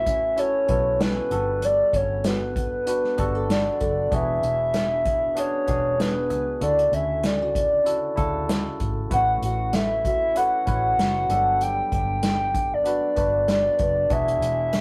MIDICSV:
0, 0, Header, 1, 6, 480
1, 0, Start_track
1, 0, Key_signature, 3, "major"
1, 0, Tempo, 624350
1, 1247, Time_signature, 4, 2, 24, 8
1, 11384, End_track
2, 0, Start_track
2, 0, Title_t, "Soft synth lead"
2, 0, Program_c, 0, 80
2, 0, Note_on_c, 0, 76, 120
2, 300, Note_on_c, 0, 73, 101
2, 312, Note_off_c, 0, 76, 0
2, 781, Note_on_c, 0, 71, 91
2, 793, Note_off_c, 0, 73, 0
2, 1265, Note_on_c, 0, 74, 104
2, 1276, Note_off_c, 0, 71, 0
2, 1503, Note_on_c, 0, 73, 90
2, 1514, Note_off_c, 0, 74, 0
2, 1741, Note_on_c, 0, 71, 89
2, 1753, Note_off_c, 0, 73, 0
2, 2694, Note_off_c, 0, 71, 0
2, 2703, Note_on_c, 0, 74, 90
2, 3180, Note_on_c, 0, 76, 112
2, 3192, Note_off_c, 0, 74, 0
2, 4141, Note_on_c, 0, 73, 98
2, 4153, Note_off_c, 0, 76, 0
2, 4621, Note_on_c, 0, 71, 93
2, 4632, Note_off_c, 0, 73, 0
2, 5093, Note_off_c, 0, 71, 0
2, 5098, Note_on_c, 0, 74, 97
2, 5336, Note_on_c, 0, 76, 91
2, 5347, Note_off_c, 0, 74, 0
2, 5579, Note_on_c, 0, 74, 85
2, 5590, Note_off_c, 0, 76, 0
2, 6772, Note_off_c, 0, 74, 0
2, 7021, Note_on_c, 0, 78, 105
2, 7236, Note_off_c, 0, 78, 0
2, 7258, Note_on_c, 0, 78, 86
2, 7494, Note_on_c, 0, 76, 99
2, 7506, Note_off_c, 0, 78, 0
2, 7729, Note_off_c, 0, 76, 0
2, 7737, Note_on_c, 0, 76, 95
2, 7972, Note_on_c, 0, 78, 114
2, 7984, Note_off_c, 0, 76, 0
2, 8938, Note_on_c, 0, 79, 110
2, 8949, Note_off_c, 0, 78, 0
2, 9171, Note_off_c, 0, 79, 0
2, 9180, Note_on_c, 0, 79, 103
2, 9792, Note_on_c, 0, 74, 99
2, 9803, Note_off_c, 0, 79, 0
2, 10372, Note_off_c, 0, 74, 0
2, 10386, Note_on_c, 0, 74, 95
2, 10858, Note_on_c, 0, 76, 113
2, 10869, Note_off_c, 0, 74, 0
2, 11384, Note_off_c, 0, 76, 0
2, 11384, End_track
3, 0, Start_track
3, 0, Title_t, "Nylon-string guitar"
3, 0, Program_c, 1, 24
3, 0, Note_on_c, 1, 57, 72
3, 0, Note_on_c, 1, 66, 55
3, 50, Note_on_c, 1, 61, 57
3, 286, Note_off_c, 1, 66, 0
3, 289, Note_on_c, 1, 66, 51
3, 525, Note_on_c, 1, 71, 62
3, 760, Note_off_c, 1, 61, 0
3, 769, Note_on_c, 1, 61, 60
3, 1011, Note_off_c, 1, 57, 0
3, 1014, Note_on_c, 1, 55, 80
3, 1061, Note_off_c, 1, 61, 0
3, 1241, Note_off_c, 1, 55, 0
3, 1250, Note_on_c, 1, 55, 72
3, 1273, Note_off_c, 1, 66, 0
3, 1490, Note_on_c, 1, 59, 52
3, 1725, Note_on_c, 1, 66, 54
3, 1960, Note_off_c, 1, 59, 0
3, 1963, Note_on_c, 1, 59, 56
3, 2204, Note_off_c, 1, 66, 0
3, 2207, Note_on_c, 1, 66, 53
3, 2444, Note_off_c, 1, 71, 0
3, 2447, Note_on_c, 1, 67, 64
3, 2575, Note_off_c, 1, 67, 0
3, 2575, Note_on_c, 1, 69, 53
3, 2682, Note_off_c, 1, 59, 0
3, 2685, Note_on_c, 1, 59, 64
3, 2912, Note_off_c, 1, 69, 0
3, 2921, Note_on_c, 1, 69, 64
3, 3162, Note_on_c, 1, 52, 76
3, 3167, Note_off_c, 1, 55, 0
3, 3216, Note_off_c, 1, 69, 0
3, 3405, Note_off_c, 1, 59, 0
3, 3408, Note_on_c, 1, 62, 50
3, 3642, Note_off_c, 1, 66, 0
3, 3645, Note_on_c, 1, 64, 56
3, 3878, Note_off_c, 1, 62, 0
3, 3881, Note_on_c, 1, 62, 61
3, 4114, Note_off_c, 1, 64, 0
3, 4123, Note_on_c, 1, 64, 50
3, 4369, Note_on_c, 1, 68, 60
3, 4597, Note_off_c, 1, 62, 0
3, 4600, Note_on_c, 1, 62, 60
3, 4838, Note_off_c, 1, 68, 0
3, 4847, Note_on_c, 1, 68, 62
3, 5079, Note_off_c, 1, 52, 0
3, 5082, Note_on_c, 1, 50, 76
3, 5137, Note_off_c, 1, 64, 0
3, 5139, Note_off_c, 1, 68, 0
3, 5324, Note_off_c, 1, 62, 0
3, 5328, Note_on_c, 1, 61, 54
3, 5572, Note_on_c, 1, 64, 56
3, 5705, Note_off_c, 1, 64, 0
3, 5705, Note_on_c, 1, 66, 50
3, 6038, Note_off_c, 1, 66, 0
3, 6048, Note_on_c, 1, 66, 51
3, 6284, Note_on_c, 1, 69, 63
3, 6761, Note_off_c, 1, 69, 0
3, 6765, Note_on_c, 1, 69, 61
3, 7003, Note_off_c, 1, 50, 0
3, 7009, Note_on_c, 1, 57, 74
3, 7246, Note_off_c, 1, 66, 0
3, 7249, Note_on_c, 1, 66, 52
3, 7482, Note_off_c, 1, 69, 0
3, 7485, Note_on_c, 1, 69, 60
3, 7725, Note_off_c, 1, 66, 0
3, 7728, Note_on_c, 1, 66, 58
3, 7967, Note_off_c, 1, 69, 0
3, 7970, Note_on_c, 1, 69, 53
3, 8018, Note_off_c, 1, 61, 0
3, 8204, Note_on_c, 1, 73, 63
3, 8444, Note_off_c, 1, 66, 0
3, 8447, Note_on_c, 1, 66, 60
3, 8685, Note_off_c, 1, 57, 0
3, 8688, Note_on_c, 1, 55, 75
3, 8737, Note_off_c, 1, 73, 0
3, 8913, Note_off_c, 1, 55, 0
3, 8922, Note_on_c, 1, 55, 76
3, 8945, Note_off_c, 1, 66, 0
3, 8945, Note_off_c, 1, 69, 0
3, 9165, Note_on_c, 1, 62, 53
3, 9639, Note_off_c, 1, 62, 0
3, 9642, Note_on_c, 1, 62, 56
3, 9880, Note_on_c, 1, 66, 54
3, 10121, Note_on_c, 1, 71, 67
3, 10364, Note_off_c, 1, 62, 0
3, 10367, Note_on_c, 1, 62, 61
3, 10604, Note_off_c, 1, 71, 0
3, 10607, Note_on_c, 1, 71, 64
3, 10840, Note_off_c, 1, 55, 0
3, 10844, Note_on_c, 1, 52, 69
3, 11092, Note_on_c, 1, 56, 53
3, 11115, Note_off_c, 1, 62, 0
3, 11115, Note_off_c, 1, 66, 0
3, 11329, Note_on_c, 1, 62, 58
3, 11384, Note_off_c, 1, 52, 0
3, 11384, Note_off_c, 1, 56, 0
3, 11384, Note_off_c, 1, 62, 0
3, 11384, Note_off_c, 1, 71, 0
3, 11384, End_track
4, 0, Start_track
4, 0, Title_t, "Tine electric piano"
4, 0, Program_c, 2, 4
4, 0, Control_c, 2, 64, 127
4, 0, Note_on_c, 2, 61, 65
4, 0, Note_on_c, 2, 64, 62
4, 0, Note_on_c, 2, 66, 57
4, 0, Note_on_c, 2, 71, 74
4, 202, Note_off_c, 2, 61, 0
4, 205, Note_off_c, 2, 64, 0
4, 209, Note_off_c, 2, 66, 0
4, 213, Note_off_c, 2, 71, 0
4, 277, Note_on_c, 2, 61, 67
4, 282, Note_on_c, 2, 64, 58
4, 290, Note_on_c, 2, 66, 58
4, 297, Note_on_c, 2, 69, 75
4, 502, Note_off_c, 2, 61, 0
4, 505, Note_off_c, 2, 64, 0
4, 509, Note_off_c, 2, 66, 0
4, 512, Note_off_c, 2, 69, 0
4, 520, Note_on_c, 2, 61, 63
4, 529, Note_on_c, 2, 64, 60
4, 534, Note_on_c, 2, 66, 58
4, 541, Note_on_c, 2, 69, 69
4, 997, Note_on_c, 2, 59, 66
4, 1000, Note_off_c, 2, 66, 0
4, 1004, Note_off_c, 2, 61, 0
4, 1005, Note_off_c, 2, 69, 0
4, 1005, Note_on_c, 2, 62, 57
4, 1008, Note_off_c, 2, 64, 0
4, 1009, Note_on_c, 2, 66, 58
4, 1015, Note_on_c, 2, 69, 71
4, 1017, Control_c, 2, 64, 0
4, 1146, Control_c, 2, 64, 127
4, 1883, Note_off_c, 2, 59, 0
4, 1887, Note_off_c, 2, 62, 0
4, 1889, Note_off_c, 2, 66, 0
4, 1892, Note_off_c, 2, 69, 0
4, 2200, Note_on_c, 2, 59, 67
4, 2207, Note_on_c, 2, 62, 66
4, 2212, Note_on_c, 2, 66, 64
4, 2219, Note_on_c, 2, 71, 79
4, 2423, Note_off_c, 2, 59, 0
4, 2427, Note_off_c, 2, 62, 0
4, 2429, Note_off_c, 2, 66, 0
4, 2433, Note_off_c, 2, 71, 0
4, 2439, Note_on_c, 2, 59, 76
4, 2445, Note_on_c, 2, 62, 75
4, 2452, Note_on_c, 2, 66, 68
4, 2457, Note_on_c, 2, 69, 81
4, 3103, Note_off_c, 2, 59, 0
4, 3106, Note_off_c, 2, 62, 0
4, 3110, Note_off_c, 2, 66, 0
4, 3113, Note_off_c, 2, 69, 0
4, 3158, Note_on_c, 2, 59, 64
4, 3166, Note_on_c, 2, 62, 62
4, 3172, Note_on_c, 2, 66, 67
4, 3177, Control_c, 2, 64, 0
4, 3179, Note_on_c, 2, 68, 76
4, 3316, Control_c, 2, 64, 127
4, 4043, Note_off_c, 2, 59, 0
4, 4047, Note_off_c, 2, 62, 0
4, 4050, Note_off_c, 2, 66, 0
4, 4053, Note_off_c, 2, 68, 0
4, 4114, Note_on_c, 2, 59, 66
4, 4121, Note_on_c, 2, 62, 65
4, 4127, Note_on_c, 2, 66, 66
4, 4134, Note_on_c, 2, 68, 76
4, 4340, Note_off_c, 2, 59, 0
4, 4343, Note_off_c, 2, 62, 0
4, 4346, Note_off_c, 2, 66, 0
4, 4350, Note_off_c, 2, 68, 0
4, 4353, Note_on_c, 2, 59, 63
4, 4361, Note_on_c, 2, 62, 57
4, 4368, Note_on_c, 2, 66, 59
4, 4373, Note_on_c, 2, 68, 77
4, 5020, Note_off_c, 2, 59, 0
4, 5024, Note_off_c, 2, 62, 0
4, 5027, Note_off_c, 2, 66, 0
4, 5030, Note_off_c, 2, 68, 0
4, 5072, Note_on_c, 2, 49, 69
4, 5078, Note_on_c, 2, 64, 57
4, 5083, Note_on_c, 2, 66, 55
4, 5092, Note_on_c, 2, 69, 71
4, 5094, Control_c, 2, 64, 0
4, 5233, Control_c, 2, 64, 127
4, 5960, Note_off_c, 2, 49, 0
4, 5963, Note_off_c, 2, 64, 0
4, 5965, Note_off_c, 2, 66, 0
4, 5969, Note_off_c, 2, 69, 0
4, 6024, Note_on_c, 2, 61, 66
4, 6035, Note_on_c, 2, 64, 61
4, 6038, Note_on_c, 2, 66, 59
4, 6045, Note_on_c, 2, 69, 72
4, 6255, Note_off_c, 2, 61, 0
4, 6260, Note_off_c, 2, 64, 0
4, 6262, Note_off_c, 2, 66, 0
4, 6265, Note_off_c, 2, 69, 0
4, 6267, Note_on_c, 2, 49, 79
4, 6272, Note_on_c, 2, 64, 67
4, 6281, Note_on_c, 2, 66, 68
4, 6284, Note_on_c, 2, 69, 85
4, 6937, Note_off_c, 2, 49, 0
4, 6939, Note_off_c, 2, 64, 0
4, 6943, Note_off_c, 2, 66, 0
4, 6945, Note_off_c, 2, 69, 0
4, 6992, Note_on_c, 2, 60, 52
4, 6999, Note_on_c, 2, 64, 61
4, 7003, Note_on_c, 2, 66, 64
4, 7008, Note_on_c, 2, 71, 69
4, 7016, Control_c, 2, 64, 0
4, 7042, Note_on_c, 2, 61, 65
4, 7053, Note_off_c, 2, 60, 0
4, 7137, Control_c, 2, 64, 127
4, 7883, Note_off_c, 2, 64, 0
4, 7885, Note_off_c, 2, 66, 0
4, 7887, Note_off_c, 2, 71, 0
4, 7904, Note_off_c, 2, 61, 0
4, 7955, Note_on_c, 2, 61, 67
4, 7961, Note_on_c, 2, 64, 59
4, 7967, Note_on_c, 2, 66, 61
4, 7973, Note_on_c, 2, 71, 77
4, 8180, Note_off_c, 2, 61, 0
4, 8183, Note_off_c, 2, 64, 0
4, 8186, Note_off_c, 2, 66, 0
4, 8189, Note_off_c, 2, 71, 0
4, 8194, Note_on_c, 2, 61, 64
4, 8201, Note_on_c, 2, 64, 56
4, 8206, Note_on_c, 2, 66, 56
4, 8212, Note_on_c, 2, 71, 75
4, 8674, Note_on_c, 2, 58, 58
4, 8679, Note_off_c, 2, 61, 0
4, 8680, Note_on_c, 2, 62, 76
4, 8683, Note_off_c, 2, 64, 0
4, 8685, Note_off_c, 2, 66, 0
4, 8688, Note_off_c, 2, 71, 0
4, 8688, Note_on_c, 2, 54, 75
4, 8693, Note_on_c, 2, 69, 84
4, 8695, Control_c, 2, 64, 0
4, 8724, Note_on_c, 2, 59, 84
4, 8734, Note_off_c, 2, 58, 0
4, 8836, Control_c, 2, 64, 127
4, 9564, Note_off_c, 2, 62, 0
4, 9567, Note_off_c, 2, 54, 0
4, 9570, Note_off_c, 2, 69, 0
4, 9585, Note_off_c, 2, 59, 0
4, 9871, Note_on_c, 2, 59, 67
4, 9877, Note_on_c, 2, 62, 63
4, 9886, Note_on_c, 2, 66, 63
4, 9892, Note_on_c, 2, 71, 81
4, 10098, Note_off_c, 2, 59, 0
4, 10101, Note_off_c, 2, 62, 0
4, 10106, Note_off_c, 2, 66, 0
4, 10109, Note_off_c, 2, 71, 0
4, 10116, Note_on_c, 2, 59, 68
4, 10121, Note_on_c, 2, 62, 59
4, 10129, Note_on_c, 2, 66, 55
4, 10135, Note_on_c, 2, 71, 71
4, 10781, Note_off_c, 2, 59, 0
4, 10784, Note_off_c, 2, 62, 0
4, 10788, Note_off_c, 2, 66, 0
4, 10791, Note_off_c, 2, 71, 0
4, 10836, Note_on_c, 2, 59, 61
4, 10841, Note_on_c, 2, 62, 67
4, 10849, Note_on_c, 2, 66, 60
4, 10853, Control_c, 2, 64, 0
4, 10857, Note_on_c, 2, 68, 74
4, 10967, Control_c, 2, 64, 127
4, 11384, Note_off_c, 2, 59, 0
4, 11384, Note_off_c, 2, 62, 0
4, 11384, Note_off_c, 2, 66, 0
4, 11384, Note_off_c, 2, 68, 0
4, 11384, End_track
5, 0, Start_track
5, 0, Title_t, "Fingered electric bass"
5, 0, Program_c, 3, 33
5, 0, Note_on_c, 3, 33, 87
5, 493, Note_off_c, 3, 33, 0
5, 530, Note_on_c, 3, 35, 79
5, 913, Note_off_c, 3, 35, 0
5, 1006, Note_on_c, 3, 31, 82
5, 1390, Note_off_c, 3, 31, 0
5, 1483, Note_on_c, 3, 31, 94
5, 2306, Note_off_c, 3, 31, 0
5, 2448, Note_on_c, 3, 31, 100
5, 2831, Note_off_c, 3, 31, 0
5, 2929, Note_on_c, 3, 30, 73
5, 3120, Note_off_c, 3, 30, 0
5, 3164, Note_on_c, 3, 28, 97
5, 3357, Note_off_c, 3, 28, 0
5, 3408, Note_on_c, 3, 28, 76
5, 4228, Note_off_c, 3, 28, 0
5, 4370, Note_on_c, 3, 28, 92
5, 4842, Note_off_c, 3, 28, 0
5, 4842, Note_on_c, 3, 37, 84
5, 5035, Note_off_c, 3, 37, 0
5, 5082, Note_on_c, 3, 38, 93
5, 5275, Note_off_c, 3, 38, 0
5, 5318, Note_on_c, 3, 38, 86
5, 6143, Note_off_c, 3, 38, 0
5, 6286, Note_on_c, 3, 38, 86
5, 6669, Note_off_c, 3, 38, 0
5, 6768, Note_on_c, 3, 32, 83
5, 6959, Note_off_c, 3, 32, 0
5, 7005, Note_on_c, 3, 33, 96
5, 7197, Note_off_c, 3, 33, 0
5, 7241, Note_on_c, 3, 33, 97
5, 8064, Note_off_c, 3, 33, 0
5, 8205, Note_on_c, 3, 33, 100
5, 8397, Note_off_c, 3, 33, 0
5, 8441, Note_on_c, 3, 30, 84
5, 8635, Note_off_c, 3, 30, 0
5, 8678, Note_on_c, 3, 31, 83
5, 9065, Note_off_c, 3, 31, 0
5, 9163, Note_on_c, 3, 31, 100
5, 9985, Note_off_c, 3, 31, 0
5, 10126, Note_on_c, 3, 31, 101
5, 10509, Note_off_c, 3, 31, 0
5, 10604, Note_on_c, 3, 30, 71
5, 10796, Note_off_c, 3, 30, 0
5, 10843, Note_on_c, 3, 28, 103
5, 11036, Note_off_c, 3, 28, 0
5, 11073, Note_on_c, 3, 28, 81
5, 11384, Note_off_c, 3, 28, 0
5, 11384, End_track
6, 0, Start_track
6, 0, Title_t, "Drums"
6, 49, Note_on_c, 9, 36, 77
6, 50, Note_on_c, 9, 42, 78
6, 126, Note_off_c, 9, 36, 0
6, 127, Note_off_c, 9, 42, 0
6, 288, Note_on_c, 9, 42, 88
6, 365, Note_off_c, 9, 42, 0
6, 526, Note_on_c, 9, 42, 64
6, 531, Note_on_c, 9, 36, 80
6, 603, Note_off_c, 9, 42, 0
6, 608, Note_off_c, 9, 36, 0
6, 773, Note_on_c, 9, 38, 96
6, 773, Note_on_c, 9, 42, 84
6, 850, Note_off_c, 9, 38, 0
6, 850, Note_off_c, 9, 42, 0
6, 1007, Note_on_c, 9, 42, 65
6, 1084, Note_off_c, 9, 42, 0
6, 1247, Note_on_c, 9, 42, 83
6, 1324, Note_off_c, 9, 42, 0
6, 1486, Note_on_c, 9, 36, 80
6, 1489, Note_on_c, 9, 42, 75
6, 1563, Note_off_c, 9, 36, 0
6, 1566, Note_off_c, 9, 42, 0
6, 1723, Note_on_c, 9, 42, 91
6, 1726, Note_on_c, 9, 38, 93
6, 1800, Note_off_c, 9, 42, 0
6, 1803, Note_off_c, 9, 38, 0
6, 1968, Note_on_c, 9, 36, 81
6, 1971, Note_on_c, 9, 42, 74
6, 2044, Note_off_c, 9, 36, 0
6, 2048, Note_off_c, 9, 42, 0
6, 2205, Note_on_c, 9, 42, 92
6, 2282, Note_off_c, 9, 42, 0
6, 2337, Note_on_c, 9, 38, 31
6, 2414, Note_off_c, 9, 38, 0
6, 2445, Note_on_c, 9, 42, 70
6, 2450, Note_on_c, 9, 36, 80
6, 2521, Note_off_c, 9, 42, 0
6, 2527, Note_off_c, 9, 36, 0
6, 2691, Note_on_c, 9, 38, 92
6, 2691, Note_on_c, 9, 42, 80
6, 2768, Note_off_c, 9, 38, 0
6, 2768, Note_off_c, 9, 42, 0
6, 2925, Note_on_c, 9, 42, 61
6, 2930, Note_on_c, 9, 36, 72
6, 3002, Note_off_c, 9, 42, 0
6, 3006, Note_off_c, 9, 36, 0
6, 3166, Note_on_c, 9, 36, 93
6, 3167, Note_on_c, 9, 42, 81
6, 3243, Note_off_c, 9, 36, 0
6, 3244, Note_off_c, 9, 42, 0
6, 3407, Note_on_c, 9, 42, 72
6, 3484, Note_off_c, 9, 42, 0
6, 3642, Note_on_c, 9, 42, 94
6, 3646, Note_on_c, 9, 38, 97
6, 3719, Note_off_c, 9, 42, 0
6, 3723, Note_off_c, 9, 38, 0
6, 3887, Note_on_c, 9, 36, 79
6, 3887, Note_on_c, 9, 42, 81
6, 3963, Note_off_c, 9, 42, 0
6, 3964, Note_off_c, 9, 36, 0
6, 4125, Note_on_c, 9, 42, 92
6, 4202, Note_off_c, 9, 42, 0
6, 4363, Note_on_c, 9, 42, 63
6, 4369, Note_on_c, 9, 36, 80
6, 4440, Note_off_c, 9, 42, 0
6, 4446, Note_off_c, 9, 36, 0
6, 4612, Note_on_c, 9, 38, 93
6, 4612, Note_on_c, 9, 42, 86
6, 4689, Note_off_c, 9, 38, 0
6, 4689, Note_off_c, 9, 42, 0
6, 4845, Note_on_c, 9, 42, 66
6, 4922, Note_off_c, 9, 42, 0
6, 5085, Note_on_c, 9, 42, 86
6, 5162, Note_off_c, 9, 42, 0
6, 5218, Note_on_c, 9, 42, 48
6, 5295, Note_off_c, 9, 42, 0
6, 5327, Note_on_c, 9, 42, 76
6, 5404, Note_off_c, 9, 42, 0
6, 5562, Note_on_c, 9, 42, 106
6, 5565, Note_on_c, 9, 38, 90
6, 5639, Note_off_c, 9, 42, 0
6, 5642, Note_off_c, 9, 38, 0
6, 5806, Note_on_c, 9, 36, 79
6, 5809, Note_on_c, 9, 42, 81
6, 5883, Note_off_c, 9, 36, 0
6, 5886, Note_off_c, 9, 42, 0
6, 6044, Note_on_c, 9, 42, 87
6, 6121, Note_off_c, 9, 42, 0
6, 6284, Note_on_c, 9, 42, 68
6, 6288, Note_on_c, 9, 36, 77
6, 6361, Note_off_c, 9, 42, 0
6, 6365, Note_off_c, 9, 36, 0
6, 6529, Note_on_c, 9, 42, 84
6, 6530, Note_on_c, 9, 38, 91
6, 6606, Note_off_c, 9, 42, 0
6, 6607, Note_off_c, 9, 38, 0
6, 6765, Note_on_c, 9, 42, 61
6, 6768, Note_on_c, 9, 36, 76
6, 6842, Note_off_c, 9, 42, 0
6, 6845, Note_off_c, 9, 36, 0
6, 7004, Note_on_c, 9, 36, 93
6, 7004, Note_on_c, 9, 42, 82
6, 7081, Note_off_c, 9, 36, 0
6, 7081, Note_off_c, 9, 42, 0
6, 7246, Note_on_c, 9, 42, 74
6, 7323, Note_off_c, 9, 42, 0
6, 7480, Note_on_c, 9, 42, 98
6, 7483, Note_on_c, 9, 38, 94
6, 7557, Note_off_c, 9, 42, 0
6, 7560, Note_off_c, 9, 38, 0
6, 7725, Note_on_c, 9, 36, 81
6, 7726, Note_on_c, 9, 42, 73
6, 7802, Note_off_c, 9, 36, 0
6, 7803, Note_off_c, 9, 42, 0
6, 7963, Note_on_c, 9, 42, 92
6, 8040, Note_off_c, 9, 42, 0
6, 8202, Note_on_c, 9, 42, 66
6, 8207, Note_on_c, 9, 36, 77
6, 8279, Note_off_c, 9, 42, 0
6, 8284, Note_off_c, 9, 36, 0
6, 8451, Note_on_c, 9, 38, 96
6, 8451, Note_on_c, 9, 42, 82
6, 8528, Note_off_c, 9, 38, 0
6, 8528, Note_off_c, 9, 42, 0
6, 8684, Note_on_c, 9, 42, 68
6, 8761, Note_off_c, 9, 42, 0
6, 8925, Note_on_c, 9, 42, 82
6, 9002, Note_off_c, 9, 42, 0
6, 9164, Note_on_c, 9, 36, 84
6, 9166, Note_on_c, 9, 42, 72
6, 9241, Note_off_c, 9, 36, 0
6, 9243, Note_off_c, 9, 42, 0
6, 9400, Note_on_c, 9, 42, 103
6, 9403, Note_on_c, 9, 38, 100
6, 9477, Note_off_c, 9, 42, 0
6, 9480, Note_off_c, 9, 38, 0
6, 9644, Note_on_c, 9, 36, 81
6, 9645, Note_on_c, 9, 42, 75
6, 9721, Note_off_c, 9, 36, 0
6, 9722, Note_off_c, 9, 42, 0
6, 9882, Note_on_c, 9, 42, 86
6, 9959, Note_off_c, 9, 42, 0
6, 10120, Note_on_c, 9, 42, 66
6, 10126, Note_on_c, 9, 36, 78
6, 10197, Note_off_c, 9, 42, 0
6, 10203, Note_off_c, 9, 36, 0
6, 10364, Note_on_c, 9, 42, 84
6, 10365, Note_on_c, 9, 38, 90
6, 10441, Note_off_c, 9, 42, 0
6, 10442, Note_off_c, 9, 38, 0
6, 10600, Note_on_c, 9, 42, 61
6, 10606, Note_on_c, 9, 36, 78
6, 10676, Note_off_c, 9, 42, 0
6, 10683, Note_off_c, 9, 36, 0
6, 10841, Note_on_c, 9, 42, 84
6, 10843, Note_on_c, 9, 36, 90
6, 10918, Note_off_c, 9, 42, 0
6, 10920, Note_off_c, 9, 36, 0
6, 10980, Note_on_c, 9, 42, 52
6, 11056, Note_off_c, 9, 42, 0
6, 11088, Note_on_c, 9, 42, 70
6, 11165, Note_off_c, 9, 42, 0
6, 11323, Note_on_c, 9, 42, 99
6, 11326, Note_on_c, 9, 38, 99
6, 11384, Note_off_c, 9, 38, 0
6, 11384, Note_off_c, 9, 42, 0
6, 11384, End_track
0, 0, End_of_file